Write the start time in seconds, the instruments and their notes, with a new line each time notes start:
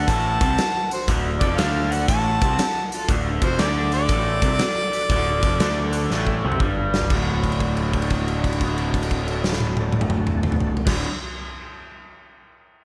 Already playing: harmonica F#5
0.08 picked electric bass A1, overdriven electric guitar A2 A3, tonewheel organ D4 F#4 A4, lead electric guitar F#5, harmonica A5, kick, closed hi-hat
0.40 picked electric bass C2, overdriven electric guitar C3 C4, tonewheel organ D4 F#4 A4, kick, closed hi-hat
0.57 tonewheel organ D4 F#4 C5, muted picked electric bass stroke, muted overdriven electric guitar stroke, snare, closed hi-hat
0.91 tonewheel organ D4 F#4 A4, lead electric guitar F#4, harmonica C5, closed hi-hat
1.07 picked electric bass D1, overdriven electric guitar D2 D3, tonewheel organ D4 F#4 B4, kick, closed hi-hat
1.39 picked electric bass F1, overdriven electric guitar F2 F3, tonewheel organ D4 F#4 A4, lead electric guitar A4, harmonica D5, kick, closed hi-hat
1.57 picked electric bass D2, overdriven electric guitar D3 D4, tonewheel organ D4 F#4 C5, lead electric guitar D5, harmonica F5, snare, closed hi-hat
1.91 tonewheel organ D4 F#4 A4, lead electric guitar D5, harmonica F#5, closed hi-hat
2.08 picked electric bass A1, overdriven electric guitar A2 A3, tonewheel organ D4 F#4 A4, lead electric guitar F#5, harmonica A5, kick, closed hi-hat
2.42 picked electric bass C2, overdriven electric guitar C3 C4, tonewheel organ D4 F#4 A4, kick, closed hi-hat
2.58 tonewheel organ D4 F#4 A4, muted picked electric bass stroke, muted overdriven electric guitar stroke, snare, closed hi-hat
2.92 tonewheel organ D4 F#4 A4, lead electric guitar F4, harmonica A4, closed hi-hat
3.09 picked electric bass D1, overdriven electric guitar D2 D3, tonewheel organ D4 F#4, kick, closed hi-hat
3.13 tonewheel organ A4
3.42 picked electric bass F1, overdriven electric guitar F2 F3, tonewheel organ D4 F#4 C5, lead electric guitar F#4, harmonica C5, kick, closed hi-hat
3.59 picked electric bass D2, overdriven electric guitar D3 D4, tonewheel organ D4 F#4 A4, lead electric guitar A4, harmonica D5, snare, closed hi-hat
3.92 tonewheel organ D4 F#4 A4, lead electric guitar A4, harmonica D5, closed hi-hat
4.09 picked electric bass A1, overdriven electric guitar A2 A3, tonewheel organ D4 F#4 A4, kick, closed hi-hat
4.42 picked electric bass C2, overdriven electric guitar C3 C4, tonewheel organ D4 F#4 A4, kick, closed hi-hat
4.59 tonewheel organ D4 F#4 A4, muted overdriven electric guitar stroke, snare, closed hi-hat
4.92 tonewheel organ D4 F#4 B4, closed hi-hat
5.09 picked electric bass D1, overdriven electric guitar D2 D3, tonewheel organ D4 F#4 A4, kick, closed hi-hat
5.42 picked electric bass F1, overdriven electric guitar F2 F3, tonewheel organ D4 F#4 A4, kick, closed hi-hat
5.60 picked electric bass D2, overdriven electric guitar D3 D4, tonewheel organ D4 F#4 A4, snare, closed hi-hat
5.92 tonewheel organ D4 F#4 A4, closed hi-hat
6.10 picked electric bass A1, overdriven electric guitar A2 A3, tonewheel organ D4 F#4 A4, snare
6.27 kick
6.44 picked electric bass C2, overdriven electric guitar C3 C4, tonewheel organ D4 F#4 A4
6.52 mid tom
6.60 picked electric bass G1, overdriven electric guitar G2 G3, tonewheel organ D4 F#4 A4, kick
6.94 tonewheel organ D4 F#4 A4, snare
7.02 floor tom
7.10 picked electric bass D1, overdriven electric guitar D2 A2, tonewheel organ D4 F#4 A4, kick, crash
7.15 overdriven electric guitar D3
7.44 kick, crash
7.52 crash
7.60 kick, crash
7.77 crash
7.93 kick, crash
8.02 crash
8.10 kick, crash
8.28 crash
8.44 kick, crash
8.53 crash
8.61 kick, crash
8.78 crash
8.94 kick, crash
9.03 crash
9.11 kick, crash
9.28 crash
9.44 snare
9.52 snare
9.60 high tom
9.77 high tom
9.92 high tom
10.01 mid tom
10.10 mid tom
10.27 mid tom
10.43 mid tom
10.52 mid tom
10.60 floor tom
10.77 floor tom
10.85 picked electric bass D1, overdriven electric guitar D2 A2, tonewheel organ D4 F#4 A4, kick, snare, crash
10.90 overdriven electric guitar D3